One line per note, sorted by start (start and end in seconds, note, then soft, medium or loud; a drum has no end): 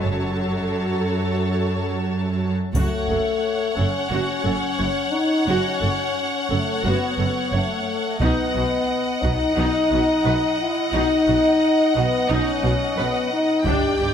0.00 0.66 F#1 soft
0.00 2.51 F#2 soft
0.00 2.40 F#3 soft
0.00 2.51 F#4 soft
0.00 2.51 A4 soft
0.00 2.51 C#5 soft
0.00 2.51 A5 soft
2.75 2.83 F#1 soft
2.75 2.83 F#2 soft
2.75 3.73 A3 medium
2.75 3.07 F#4 soft
2.75 8.16 C#5 soft
2.75 8.17 F#5 soft
2.75 taiko soft
2.75 triangle soft
3.09 3.17 F#1 soft
3.09 3.17 F#2 soft
3.09 3.18 A4 soft
3.76 3.85 F#1 soft
3.76 3.86 F#2 soft
3.76 4.10 C#4 soft
3.76 3.85 A4 soft
4.11 4.19 F#1 soft
4.11 4.19 F#2 soft
4.11 5.11 C#4 medium
4.11 4.43 F#4 soft
4.44 4.54 F#1 soft
4.44 4.54 F#2 soft
4.44 4.52 A4 soft
4.79 4.88 F#1 soft
4.79 4.88 F#2 soft
4.79 4.87 C#5 soft
5.12 5.47 D#4 medium
5.47 5.56 F#1 soft
5.47 5.55 F#2 soft
5.47 6.48 C#4 soft
5.47 5.79 F#4 medium
5.81 5.90 F#1 soft
5.81 5.90 F#2 soft
5.81 5.89 A4 soft
6.50 6.59 F#1 soft
6.50 6.59 F#2 soft
6.50 6.84 A3 soft
6.50 6.58 A4 soft
6.85 6.93 F#1 soft
6.85 6.93 F#2 medium
6.85 7.52 B3 medium
6.85 7.16 F#4 soft
7.18 7.26 F#1 soft
7.18 7.27 F#2 soft
7.18 7.26 A4 soft
7.53 7.61 F#1 soft
7.53 7.61 F#2 soft
7.53 8.21 A3 soft
7.53 7.61 C#5 soft
8.20 8.29 B1 soft
8.20 8.29 B2 soft
8.20 9.20 B3 medium
8.20 8.52 D#4 soft
8.20 13.66 D#5 soft
8.20 13.62 F#5 soft
8.20 taiko soft
8.53 8.63 B1 soft
8.53 8.64 B2 soft
8.53 8.61 F#4 soft
9.22 9.31 B1 soft
9.22 9.32 B2 soft
9.22 9.54 D#4 medium
9.22 9.30 F#4 soft
9.22 taiko soft
9.55 9.66 B1 soft
9.55 9.65 B2 medium
9.55 10.56 D#4 medium
9.55 9.88 D#4 soft
9.90 9.99 B1 soft
9.90 9.99 B2 soft
9.90 9.98 F#4 soft
10.25 10.34 B1 soft
10.25 10.33 B2 soft
10.25 10.33 B4 soft
10.60 10.93 E4 soft
10.93 11.01 B1 soft
10.93 11.02 B2 soft
10.93 11.24 D#4 soft
10.93 11.93 D#4 medium
11.27 11.35 B1 soft
11.27 11.36 B2 soft
11.27 11.35 F#4 soft
11.95 12.04 B1 soft
11.95 12.04 B2 soft
11.95 12.29 B3 medium
11.95 12.03 F#4 soft
12.29 12.38 B1 medium
12.29 12.38 B2 medium
12.29 12.96 C#4 medium
12.29 12.61 D#4 medium
12.64 12.72 B1 soft
12.64 12.72 B2 soft
12.64 12.72 F#4 soft
12.97 13.05 B1 soft
12.97 13.06 B2 soft
12.97 13.32 B3 medium
12.97 13.06 B4 soft
13.32 13.65 D#4 medium
13.64 13.73 G1 medium
13.64 13.74 G2 soft
13.64 13.97 D4 soft
13.64 14.14 G4 medium
13.64 14.14 D5 soft
13.64 14.14 G5 soft
13.64 taiko soft
14.00 14.08 G1 soft
14.00 14.09 G2 soft
14.00 14.08 G4 soft